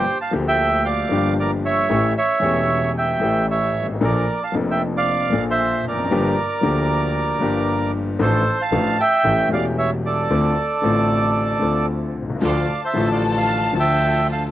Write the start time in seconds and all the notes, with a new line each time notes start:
Already playing: G4 C5
0.21 F5 A5
0.31 D2 D3 F3 A#3 D4 G4
0.48 E5 G5
0.85 D5 F5
1.09 G1 G2 F3 A#3 D4 G4
1.39 A#4 D5
1.65 C#5 E5
1.89 A1 A2 E3 A3 C#4 G4
2.17 C#5 E5
2.40 E1 E2 E3 A3 C#4
2.44 G4
2.98 E5 G5
3.20 A1 A2 E3 A3 C#4
3.24 G4
3.51 C#5 E5
3.75 G#1
3.82 G1
3.88 G#1
3.94 A1
4.01 A#1 A#2 F3 A#3 D4 A4 A#4 D5
4.43 F5 A5
4.52 F1 F2 F3 A#3 D4 A4
4.71 E5 G5
4.97 D5 F5
5.30 A#1 A#2 F3 A#3 D4
5.34 A4
5.50 C5 E5
5.84 F1 A#4
5.88 E2 D5
5.98 F2
6.05 F#2
6.10 G1 G2 F3 A#3 D4 G4
6.61 D2 D3 F3 A#3 D4 G4
7.40 G1 G2 F3 A#3 D4 G4
8.19 A1 A2 F3 A3 D4 A4 C5
8.62 F5 A5
8.71 A1 A2 F3 A3 D4 A4
9.00 E5 G5
9.24 A1 A2 E3 A3 C#4 G4
9.49 E1 E2 E3 A3 C#4 G4 F5
9.54 D5
9.78 C#5 E5
10.06 A4 D5
10.29 D2 D3 A3 C4 F4
10.82 A1 A2 D3 A3 C4 F4
11.59 D2 D3 A3 C4
11.64 F4
12.16 C2
12.22 B1
12.30 C2
12.35 C#2
12.42 D2 D3 F3 A3 D4 F4 A4 D5 A5
12.47 F5
12.85 C5 E5
12.93 A1 A2 D3 F3 A3 D4 F4 A4
12.98 F4
13.12 D5 F5
13.38 F5 A5
13.73 D2 D3 F3 A3 D4 F4 A4
13.80 E5 G5
14.32 F5 A5